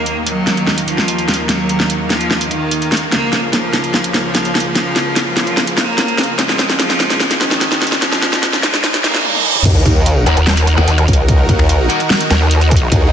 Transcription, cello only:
Already playing: A#3
0.26 F#3
0.88 F3
1.49 F#3
2.10 F3
2.51 D#3
3.12 A#3
3.53 F3
4.14 F3
4.75 F3
5.37 F3
5.77 A#3
6.39 G#3
6.79 F3
7.41 D#3
8.02 F3
8.63 G#3
9.04 A#3

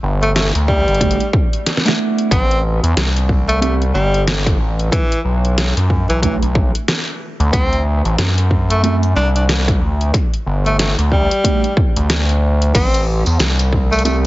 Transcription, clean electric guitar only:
1.00 A3 B3 D4 F#4
1.85 A3 B3 D4 E4
3.61 B3 C4 E4 G4
6.22 A3 B3 D4 F#4
8.83 A3 C4 E4 F#4
11.44 A3 B3 D4 F#4
14.05 B3 C4 E4 G4

